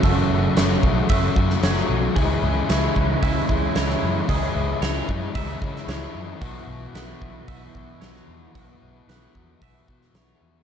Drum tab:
HH |o---o---o---o---|o---o---o---o---|o---o---o---o---|o---o---o---o---|
SD |----o------ooo--|----o-------oo--|----o------oo---|----o-------oo--|
BD |o-----o-o-o-----|o-----o-o-o-----|o-----o-o-o-----|o-----o-o-o-----|

HH |o---o---o---o---|
SD |----o------oo---|
BD |o-----o-o-o-----|